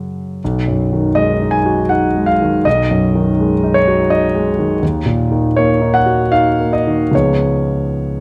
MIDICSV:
0, 0, Header, 1, 2, 480
1, 0, Start_track
1, 0, Tempo, 845070
1, 233, Time_signature, 3, 2, 24, 8
1, 233, Tempo, 750000
1, 1673, Tempo, 722022
1, 3593, Tempo, 761421
1, 4073, Tempo, 840336
1, 5154, End_track
2, 0, Start_track
2, 0, Title_t, "Grand piano"
2, 0, Program_c, 0, 0
2, 0, Control_c, 0, 64, 127
2, 0, Note_on_c, 0, 42, 34
2, 0, Note_on_c, 0, 49, 25
2, 210, Note_off_c, 0, 42, 0
2, 233, Note_off_c, 0, 49, 0
2, 243, Control_c, 0, 64, 0
2, 254, Note_on_c, 0, 35, 39
2, 335, Control_c, 0, 64, 127
2, 405, Note_on_c, 0, 42, 29
2, 563, Note_on_c, 0, 51, 31
2, 659, Note_off_c, 0, 42, 0
2, 707, Note_on_c, 0, 75, 62
2, 711, Note_on_c, 0, 56, 29
2, 815, Note_off_c, 0, 51, 0
2, 876, Note_on_c, 0, 63, 31
2, 937, Note_on_c, 0, 80, 65
2, 950, Note_off_c, 0, 75, 0
2, 967, Note_off_c, 0, 56, 0
2, 1031, Note_on_c, 0, 66, 32
2, 1130, Note_off_c, 0, 63, 0
2, 1182, Note_on_c, 0, 78, 60
2, 1186, Note_off_c, 0, 80, 0
2, 1189, Note_on_c, 0, 63, 33
2, 1290, Note_off_c, 0, 66, 0
2, 1356, Note_on_c, 0, 56, 31
2, 1419, Note_on_c, 0, 77, 65
2, 1430, Note_off_c, 0, 78, 0
2, 1449, Note_off_c, 0, 63, 0
2, 1518, Note_on_c, 0, 51, 31
2, 1610, Note_off_c, 0, 56, 0
2, 1657, Note_off_c, 0, 35, 0
2, 1663, Note_off_c, 0, 77, 0
2, 1667, Note_on_c, 0, 75, 70
2, 1673, Note_off_c, 0, 51, 0
2, 1676, Note_on_c, 0, 35, 41
2, 1683, Control_c, 0, 64, 0
2, 1769, Control_c, 0, 64, 127
2, 1840, Note_on_c, 0, 42, 33
2, 2000, Note_on_c, 0, 51, 36
2, 2091, Note_off_c, 0, 42, 0
2, 2161, Note_on_c, 0, 56, 35
2, 2251, Note_off_c, 0, 51, 0
2, 2321, Note_on_c, 0, 63, 37
2, 2387, Note_off_c, 0, 75, 0
2, 2393, Note_on_c, 0, 73, 65
2, 2410, Note_off_c, 0, 56, 0
2, 2481, Note_on_c, 0, 66, 37
2, 2570, Note_off_c, 0, 63, 0
2, 2630, Note_off_c, 0, 73, 0
2, 2632, Note_on_c, 0, 75, 66
2, 2634, Note_on_c, 0, 63, 39
2, 2731, Note_off_c, 0, 66, 0
2, 2797, Note_on_c, 0, 56, 35
2, 2887, Note_off_c, 0, 63, 0
2, 2952, Note_on_c, 0, 51, 32
2, 3049, Note_off_c, 0, 56, 0
2, 3084, Note_off_c, 0, 35, 0
2, 3110, Note_off_c, 0, 51, 0
2, 3110, Note_off_c, 0, 75, 0
2, 3113, Note_on_c, 0, 39, 42
2, 3120, Control_c, 0, 64, 0
2, 3224, Control_c, 0, 64, 127
2, 3266, Note_on_c, 0, 46, 35
2, 3438, Note_on_c, 0, 51, 36
2, 3525, Note_off_c, 0, 46, 0
2, 3604, Note_on_c, 0, 73, 61
2, 3615, Note_on_c, 0, 58, 34
2, 3690, Note_off_c, 0, 51, 0
2, 3761, Note_on_c, 0, 63, 34
2, 3834, Note_off_c, 0, 73, 0
2, 3838, Note_on_c, 0, 78, 72
2, 3856, Note_off_c, 0, 58, 0
2, 3916, Note_on_c, 0, 66, 35
2, 4012, Note_off_c, 0, 63, 0
2, 4076, Note_off_c, 0, 78, 0
2, 4077, Note_on_c, 0, 77, 68
2, 4079, Note_on_c, 0, 63, 34
2, 4166, Note_off_c, 0, 66, 0
2, 4241, Note_on_c, 0, 58, 30
2, 4303, Note_off_c, 0, 77, 0
2, 4313, Note_on_c, 0, 75, 55
2, 4320, Note_off_c, 0, 63, 0
2, 4394, Note_on_c, 0, 51, 29
2, 4484, Note_off_c, 0, 58, 0
2, 4519, Note_off_c, 0, 39, 0
2, 4529, Note_on_c, 0, 37, 34
2, 4534, Note_on_c, 0, 53, 28
2, 4542, Note_on_c, 0, 59, 28
2, 4546, Note_off_c, 0, 75, 0
2, 4548, Note_off_c, 0, 51, 0
2, 4548, Note_on_c, 0, 63, 26
2, 4550, Control_c, 0, 64, 0
2, 4551, Note_on_c, 0, 68, 26
2, 4552, Note_on_c, 0, 73, 54
2, 4648, Control_c, 0, 64, 127
2, 5154, Note_off_c, 0, 37, 0
2, 5154, Note_off_c, 0, 53, 0
2, 5154, Note_off_c, 0, 59, 0
2, 5154, Note_off_c, 0, 63, 0
2, 5154, Note_off_c, 0, 68, 0
2, 5154, Note_off_c, 0, 73, 0
2, 5154, End_track
0, 0, End_of_file